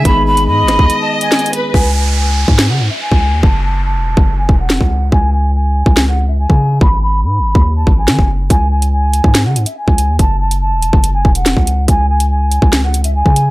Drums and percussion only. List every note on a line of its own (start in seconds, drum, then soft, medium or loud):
0.05 kick loud
0.05 closed hi-hat medium
0.37 closed hi-hat medium
0.68 cross-stick medium
0.68 snare medium
0.68 closed hi-hat medium
0.79 kick loud
0.90 closed hi-hat medium
1.21 closed hi-hat medium
1.32 snare loud
1.32 closed hi-hat soft
1.39 closed hi-hat medium
1.46 closed hi-hat medium
1.53 closed hi-hat medium
1.74 kick loud
2.48 kick loud
2.59 snare loud
3.12 kick medium
3.43 kick loud
4.17 kick loud
4.49 kick loud
4.70 snare loud
4.81 kick medium
5.12 kick loud
5.86 kick loud
5.97 snare loud
6.50 kick medium
6.81 kick loud
7.55 kick loud
7.87 kick medium
8.08 snare loud
8.19 kick medium
8.50 kick loud
8.50 closed hi-hat medium
8.82 closed hi-hat medium
9.14 closed hi-hat medium
9.24 kick loud
9.35 snare loud
9.35 closed hi-hat medium
9.56 closed hi-hat medium
9.66 closed hi-hat medium
9.88 kick medium
9.98 closed hi-hat medium
10.19 kick loud
10.19 closed hi-hat medium
10.51 closed hi-hat medium
10.82 closed hi-hat medium
10.93 kick loud
11.04 closed hi-hat medium
11.25 kick loud
11.35 closed hi-hat medium
11.46 snare loud
11.46 closed hi-hat medium
11.57 kick loud
11.67 closed hi-hat medium
11.88 kick loud
11.88 closed hi-hat medium
12.20 closed hi-hat medium
12.52 closed hi-hat medium
12.62 kick loud
12.73 snare loud
12.73 closed hi-hat medium
12.94 closed hi-hat medium
13.04 closed hi-hat medium
13.26 kick loud
13.36 closed hi-hat medium